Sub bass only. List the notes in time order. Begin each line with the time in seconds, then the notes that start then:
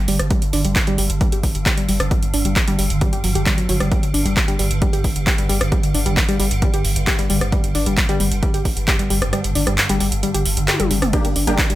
0.08 G1
0.20 G1
0.42 G1
0.53 G1
0.65 G1
0.87 G1
0.98 G1
1.10 G1
1.32 G1
1.43 G1
1.55 G1
1.77 G1
1.89 G1
2.00 G1
2.23 G1
2.34 G1
2.45 G1
2.68 G1
2.79 G1
2.90 G1
3.13 G1
3.24 G1
3.35 G1
3.58 G1
3.69 G1
3.81 G1
4.03 G1
4.14 G1
4.26 G1
4.48 G1
4.59 G1
4.71 G1
4.93 G1
5.04 G1
5.16 G1
5.39 G1
5.49 G1
5.61 G1
5.84 G1
5.95 G1
6.06 G1
6.29 G1
6.40 G1
6.51 G1
6.74 G1
6.85 G1
6.96 G1
7.19 G1
7.30 G1
7.41 G1
7.64 G1
7.75 G1
7.87 G1
8.09 G1
8.20 G1
8.32 G1
8.54 G1
8.65 G1
8.77 G1
8.99 G1
9.10 G1
9.22 G1
9.44 G1
9.55 G1
9.67 G1
9.89 G1
10.01 G1
10.12 G1
10.35 G1
10.46 G1
10.57 G1
10.80 G1
10.91 G1
11.02 G1
11.25 G1
11.36 G1
11.47 G1
11.70 G1